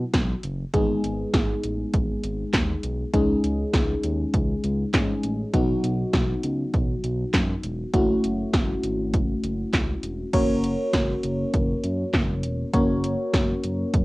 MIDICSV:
0, 0, Header, 1, 4, 480
1, 0, Start_track
1, 0, Tempo, 600000
1, 589, Time_signature, 4, 2, 24, 8
1, 11238, End_track
2, 0, Start_track
2, 0, Title_t, "FM electric piano"
2, 0, Program_c, 0, 5
2, 0, Note_on_c, 0, 54, 74
2, 0, Note_on_c, 0, 59, 66
2, 0, Note_on_c, 0, 64, 70
2, 0, Note_on_c, 0, 66, 81
2, 317, Note_off_c, 0, 54, 0
2, 317, Note_off_c, 0, 59, 0
2, 317, Note_off_c, 0, 64, 0
2, 317, Note_off_c, 0, 66, 0
2, 588, Note_on_c, 0, 56, 74
2, 588, Note_on_c, 0, 59, 73
2, 588, Note_on_c, 0, 68, 82
2, 589, Note_on_c, 0, 63, 69
2, 2476, Note_off_c, 0, 56, 0
2, 2476, Note_off_c, 0, 59, 0
2, 2476, Note_off_c, 0, 63, 0
2, 2476, Note_off_c, 0, 68, 0
2, 2509, Note_on_c, 0, 56, 78
2, 2509, Note_on_c, 0, 61, 73
2, 2509, Note_on_c, 0, 63, 74
2, 2509, Note_on_c, 0, 68, 84
2, 3920, Note_off_c, 0, 56, 0
2, 3920, Note_off_c, 0, 61, 0
2, 3920, Note_off_c, 0, 63, 0
2, 3920, Note_off_c, 0, 68, 0
2, 3949, Note_on_c, 0, 56, 60
2, 3949, Note_on_c, 0, 61, 53
2, 3949, Note_on_c, 0, 63, 54
2, 3949, Note_on_c, 0, 68, 64
2, 4420, Note_off_c, 0, 63, 0
2, 4429, Note_off_c, 0, 56, 0
2, 4429, Note_off_c, 0, 61, 0
2, 4429, Note_off_c, 0, 68, 0
2, 4429, Note_on_c, 0, 54, 79
2, 4430, Note_on_c, 0, 59, 73
2, 4430, Note_on_c, 0, 63, 73
2, 4430, Note_on_c, 0, 66, 86
2, 6317, Note_off_c, 0, 54, 0
2, 6317, Note_off_c, 0, 59, 0
2, 6317, Note_off_c, 0, 63, 0
2, 6317, Note_off_c, 0, 66, 0
2, 6349, Note_on_c, 0, 57, 78
2, 6349, Note_on_c, 0, 61, 74
2, 6349, Note_on_c, 0, 64, 73
2, 6349, Note_on_c, 0, 66, 89
2, 8237, Note_off_c, 0, 57, 0
2, 8237, Note_off_c, 0, 61, 0
2, 8237, Note_off_c, 0, 64, 0
2, 8237, Note_off_c, 0, 66, 0
2, 8269, Note_on_c, 0, 58, 77
2, 8269, Note_on_c, 0, 61, 73
2, 8269, Note_on_c, 0, 66, 74
2, 8269, Note_on_c, 0, 73, 89
2, 8270, Note_on_c, 0, 70, 74
2, 10157, Note_off_c, 0, 58, 0
2, 10157, Note_off_c, 0, 61, 0
2, 10157, Note_off_c, 0, 66, 0
2, 10157, Note_off_c, 0, 70, 0
2, 10157, Note_off_c, 0, 73, 0
2, 10188, Note_on_c, 0, 66, 74
2, 10188, Note_on_c, 0, 70, 73
2, 10189, Note_on_c, 0, 58, 82
2, 10189, Note_on_c, 0, 61, 71
2, 10189, Note_on_c, 0, 73, 89
2, 11238, Note_off_c, 0, 58, 0
2, 11238, Note_off_c, 0, 61, 0
2, 11238, Note_off_c, 0, 66, 0
2, 11238, Note_off_c, 0, 70, 0
2, 11238, Note_off_c, 0, 73, 0
2, 11238, End_track
3, 0, Start_track
3, 0, Title_t, "Analog synth bass"
3, 0, Program_c, 1, 38
3, 109, Note_on_c, 1, 35, 103
3, 277, Note_off_c, 1, 35, 0
3, 348, Note_on_c, 1, 30, 93
3, 516, Note_off_c, 1, 30, 0
3, 588, Note_on_c, 1, 32, 103
3, 756, Note_off_c, 1, 32, 0
3, 828, Note_on_c, 1, 32, 96
3, 996, Note_off_c, 1, 32, 0
3, 1068, Note_on_c, 1, 32, 96
3, 1236, Note_off_c, 1, 32, 0
3, 1308, Note_on_c, 1, 33, 83
3, 1476, Note_off_c, 1, 33, 0
3, 1550, Note_on_c, 1, 32, 99
3, 1717, Note_off_c, 1, 32, 0
3, 1789, Note_on_c, 1, 32, 100
3, 1957, Note_off_c, 1, 32, 0
3, 2028, Note_on_c, 1, 39, 101
3, 2196, Note_off_c, 1, 39, 0
3, 2269, Note_on_c, 1, 35, 92
3, 2437, Note_off_c, 1, 35, 0
3, 2508, Note_on_c, 1, 37, 98
3, 2676, Note_off_c, 1, 37, 0
3, 2748, Note_on_c, 1, 37, 104
3, 2916, Note_off_c, 1, 37, 0
3, 2988, Note_on_c, 1, 37, 101
3, 3156, Note_off_c, 1, 37, 0
3, 3229, Note_on_c, 1, 39, 97
3, 3397, Note_off_c, 1, 39, 0
3, 3470, Note_on_c, 1, 37, 101
3, 3638, Note_off_c, 1, 37, 0
3, 3709, Note_on_c, 1, 37, 96
3, 3876, Note_off_c, 1, 37, 0
3, 3949, Note_on_c, 1, 44, 97
3, 4117, Note_off_c, 1, 44, 0
3, 4189, Note_on_c, 1, 33, 90
3, 4357, Note_off_c, 1, 33, 0
3, 4428, Note_on_c, 1, 35, 107
3, 4596, Note_off_c, 1, 35, 0
3, 4668, Note_on_c, 1, 35, 100
3, 4836, Note_off_c, 1, 35, 0
3, 4908, Note_on_c, 1, 35, 97
3, 5076, Note_off_c, 1, 35, 0
3, 5148, Note_on_c, 1, 37, 93
3, 5316, Note_off_c, 1, 37, 0
3, 5390, Note_on_c, 1, 35, 107
3, 5558, Note_off_c, 1, 35, 0
3, 5628, Note_on_c, 1, 35, 101
3, 5796, Note_off_c, 1, 35, 0
3, 5869, Note_on_c, 1, 42, 94
3, 6036, Note_off_c, 1, 42, 0
3, 6109, Note_on_c, 1, 28, 88
3, 6277, Note_off_c, 1, 28, 0
3, 6348, Note_on_c, 1, 30, 104
3, 6516, Note_off_c, 1, 30, 0
3, 6588, Note_on_c, 1, 30, 95
3, 6756, Note_off_c, 1, 30, 0
3, 6828, Note_on_c, 1, 30, 98
3, 6996, Note_off_c, 1, 30, 0
3, 7068, Note_on_c, 1, 32, 95
3, 7310, Note_on_c, 1, 30, 106
3, 7322, Note_off_c, 1, 32, 0
3, 7477, Note_off_c, 1, 30, 0
3, 7548, Note_on_c, 1, 30, 91
3, 7716, Note_off_c, 1, 30, 0
3, 7789, Note_on_c, 1, 37, 97
3, 7957, Note_off_c, 1, 37, 0
3, 8028, Note_on_c, 1, 28, 94
3, 8196, Note_off_c, 1, 28, 0
3, 8268, Note_on_c, 1, 30, 105
3, 8604, Note_off_c, 1, 30, 0
3, 8748, Note_on_c, 1, 30, 102
3, 8916, Note_off_c, 1, 30, 0
3, 8988, Note_on_c, 1, 30, 102
3, 9156, Note_off_c, 1, 30, 0
3, 9230, Note_on_c, 1, 30, 107
3, 9398, Note_off_c, 1, 30, 0
3, 9469, Note_on_c, 1, 42, 94
3, 9637, Note_off_c, 1, 42, 0
3, 9709, Note_on_c, 1, 30, 97
3, 9948, Note_on_c, 1, 28, 92
3, 9960, Note_off_c, 1, 30, 0
3, 10116, Note_off_c, 1, 28, 0
3, 10189, Note_on_c, 1, 30, 109
3, 10524, Note_off_c, 1, 30, 0
3, 10668, Note_on_c, 1, 30, 104
3, 10836, Note_off_c, 1, 30, 0
3, 10909, Note_on_c, 1, 30, 95
3, 11077, Note_off_c, 1, 30, 0
3, 11150, Note_on_c, 1, 30, 111
3, 11238, Note_off_c, 1, 30, 0
3, 11238, End_track
4, 0, Start_track
4, 0, Title_t, "Drums"
4, 109, Note_on_c, 9, 36, 124
4, 109, Note_on_c, 9, 42, 76
4, 110, Note_on_c, 9, 38, 118
4, 189, Note_off_c, 9, 36, 0
4, 189, Note_off_c, 9, 42, 0
4, 190, Note_off_c, 9, 38, 0
4, 346, Note_on_c, 9, 42, 78
4, 426, Note_off_c, 9, 42, 0
4, 588, Note_on_c, 9, 36, 106
4, 588, Note_on_c, 9, 42, 80
4, 668, Note_off_c, 9, 36, 0
4, 668, Note_off_c, 9, 42, 0
4, 830, Note_on_c, 9, 42, 77
4, 910, Note_off_c, 9, 42, 0
4, 1068, Note_on_c, 9, 36, 120
4, 1068, Note_on_c, 9, 42, 74
4, 1070, Note_on_c, 9, 38, 111
4, 1148, Note_off_c, 9, 36, 0
4, 1148, Note_off_c, 9, 42, 0
4, 1150, Note_off_c, 9, 38, 0
4, 1308, Note_on_c, 9, 42, 79
4, 1388, Note_off_c, 9, 42, 0
4, 1549, Note_on_c, 9, 42, 82
4, 1550, Note_on_c, 9, 36, 116
4, 1629, Note_off_c, 9, 42, 0
4, 1630, Note_off_c, 9, 36, 0
4, 1789, Note_on_c, 9, 42, 70
4, 1869, Note_off_c, 9, 42, 0
4, 2028, Note_on_c, 9, 36, 123
4, 2028, Note_on_c, 9, 42, 77
4, 2029, Note_on_c, 9, 38, 122
4, 2029, Note_on_c, 9, 39, 100
4, 2108, Note_off_c, 9, 36, 0
4, 2108, Note_off_c, 9, 42, 0
4, 2109, Note_off_c, 9, 38, 0
4, 2109, Note_off_c, 9, 39, 0
4, 2266, Note_on_c, 9, 42, 80
4, 2346, Note_off_c, 9, 42, 0
4, 2508, Note_on_c, 9, 36, 108
4, 2508, Note_on_c, 9, 42, 80
4, 2588, Note_off_c, 9, 36, 0
4, 2588, Note_off_c, 9, 42, 0
4, 2751, Note_on_c, 9, 42, 77
4, 2831, Note_off_c, 9, 42, 0
4, 2988, Note_on_c, 9, 36, 119
4, 2989, Note_on_c, 9, 42, 75
4, 2990, Note_on_c, 9, 38, 119
4, 3068, Note_off_c, 9, 36, 0
4, 3069, Note_off_c, 9, 42, 0
4, 3070, Note_off_c, 9, 38, 0
4, 3228, Note_on_c, 9, 42, 76
4, 3308, Note_off_c, 9, 42, 0
4, 3469, Note_on_c, 9, 42, 82
4, 3470, Note_on_c, 9, 36, 118
4, 3549, Note_off_c, 9, 42, 0
4, 3550, Note_off_c, 9, 36, 0
4, 3709, Note_on_c, 9, 42, 69
4, 3789, Note_off_c, 9, 42, 0
4, 3949, Note_on_c, 9, 36, 124
4, 3949, Note_on_c, 9, 42, 78
4, 3950, Note_on_c, 9, 38, 117
4, 3950, Note_on_c, 9, 39, 101
4, 4029, Note_off_c, 9, 36, 0
4, 4029, Note_off_c, 9, 42, 0
4, 4030, Note_off_c, 9, 38, 0
4, 4030, Note_off_c, 9, 39, 0
4, 4187, Note_on_c, 9, 42, 77
4, 4267, Note_off_c, 9, 42, 0
4, 4429, Note_on_c, 9, 36, 114
4, 4429, Note_on_c, 9, 42, 82
4, 4509, Note_off_c, 9, 36, 0
4, 4509, Note_off_c, 9, 42, 0
4, 4671, Note_on_c, 9, 42, 82
4, 4751, Note_off_c, 9, 42, 0
4, 4908, Note_on_c, 9, 36, 121
4, 4908, Note_on_c, 9, 42, 75
4, 4910, Note_on_c, 9, 38, 120
4, 4988, Note_off_c, 9, 36, 0
4, 4988, Note_off_c, 9, 42, 0
4, 4990, Note_off_c, 9, 38, 0
4, 5147, Note_on_c, 9, 42, 80
4, 5227, Note_off_c, 9, 42, 0
4, 5389, Note_on_c, 9, 42, 82
4, 5390, Note_on_c, 9, 36, 122
4, 5469, Note_off_c, 9, 42, 0
4, 5470, Note_off_c, 9, 36, 0
4, 5629, Note_on_c, 9, 42, 68
4, 5709, Note_off_c, 9, 42, 0
4, 5868, Note_on_c, 9, 36, 127
4, 5868, Note_on_c, 9, 42, 77
4, 5869, Note_on_c, 9, 38, 123
4, 5869, Note_on_c, 9, 39, 102
4, 5948, Note_off_c, 9, 36, 0
4, 5948, Note_off_c, 9, 42, 0
4, 5949, Note_off_c, 9, 38, 0
4, 5949, Note_off_c, 9, 39, 0
4, 6106, Note_on_c, 9, 42, 77
4, 6186, Note_off_c, 9, 42, 0
4, 6348, Note_on_c, 9, 36, 112
4, 6348, Note_on_c, 9, 42, 83
4, 6428, Note_off_c, 9, 36, 0
4, 6428, Note_off_c, 9, 42, 0
4, 6591, Note_on_c, 9, 42, 79
4, 6671, Note_off_c, 9, 42, 0
4, 6828, Note_on_c, 9, 36, 124
4, 6829, Note_on_c, 9, 42, 73
4, 6830, Note_on_c, 9, 38, 116
4, 6908, Note_off_c, 9, 36, 0
4, 6909, Note_off_c, 9, 42, 0
4, 6910, Note_off_c, 9, 38, 0
4, 7068, Note_on_c, 9, 42, 80
4, 7148, Note_off_c, 9, 42, 0
4, 7309, Note_on_c, 9, 42, 83
4, 7310, Note_on_c, 9, 36, 114
4, 7389, Note_off_c, 9, 42, 0
4, 7390, Note_off_c, 9, 36, 0
4, 7549, Note_on_c, 9, 42, 71
4, 7629, Note_off_c, 9, 42, 0
4, 7788, Note_on_c, 9, 36, 127
4, 7789, Note_on_c, 9, 42, 77
4, 7790, Note_on_c, 9, 38, 125
4, 7790, Note_on_c, 9, 39, 103
4, 7868, Note_off_c, 9, 36, 0
4, 7869, Note_off_c, 9, 42, 0
4, 7870, Note_off_c, 9, 38, 0
4, 7870, Note_off_c, 9, 39, 0
4, 8027, Note_on_c, 9, 42, 82
4, 8107, Note_off_c, 9, 42, 0
4, 8268, Note_on_c, 9, 36, 114
4, 8268, Note_on_c, 9, 42, 81
4, 8268, Note_on_c, 9, 49, 101
4, 8348, Note_off_c, 9, 36, 0
4, 8348, Note_off_c, 9, 42, 0
4, 8348, Note_off_c, 9, 49, 0
4, 8511, Note_on_c, 9, 42, 82
4, 8591, Note_off_c, 9, 42, 0
4, 8748, Note_on_c, 9, 36, 120
4, 8748, Note_on_c, 9, 42, 78
4, 8749, Note_on_c, 9, 38, 114
4, 8828, Note_off_c, 9, 36, 0
4, 8828, Note_off_c, 9, 42, 0
4, 8829, Note_off_c, 9, 38, 0
4, 8987, Note_on_c, 9, 42, 77
4, 9067, Note_off_c, 9, 42, 0
4, 9229, Note_on_c, 9, 42, 81
4, 9230, Note_on_c, 9, 36, 120
4, 9309, Note_off_c, 9, 42, 0
4, 9310, Note_off_c, 9, 36, 0
4, 9469, Note_on_c, 9, 42, 70
4, 9549, Note_off_c, 9, 42, 0
4, 9709, Note_on_c, 9, 36, 127
4, 9709, Note_on_c, 9, 42, 78
4, 9710, Note_on_c, 9, 38, 124
4, 9710, Note_on_c, 9, 39, 104
4, 9789, Note_off_c, 9, 36, 0
4, 9789, Note_off_c, 9, 42, 0
4, 9790, Note_off_c, 9, 38, 0
4, 9790, Note_off_c, 9, 39, 0
4, 9946, Note_on_c, 9, 42, 82
4, 10026, Note_off_c, 9, 42, 0
4, 10188, Note_on_c, 9, 36, 111
4, 10188, Note_on_c, 9, 42, 85
4, 10268, Note_off_c, 9, 36, 0
4, 10268, Note_off_c, 9, 42, 0
4, 10431, Note_on_c, 9, 42, 84
4, 10511, Note_off_c, 9, 42, 0
4, 10668, Note_on_c, 9, 36, 122
4, 10669, Note_on_c, 9, 42, 79
4, 10670, Note_on_c, 9, 38, 119
4, 10748, Note_off_c, 9, 36, 0
4, 10749, Note_off_c, 9, 42, 0
4, 10750, Note_off_c, 9, 38, 0
4, 10908, Note_on_c, 9, 42, 78
4, 10988, Note_off_c, 9, 42, 0
4, 11149, Note_on_c, 9, 42, 86
4, 11150, Note_on_c, 9, 36, 122
4, 11229, Note_off_c, 9, 42, 0
4, 11230, Note_off_c, 9, 36, 0
4, 11238, End_track
0, 0, End_of_file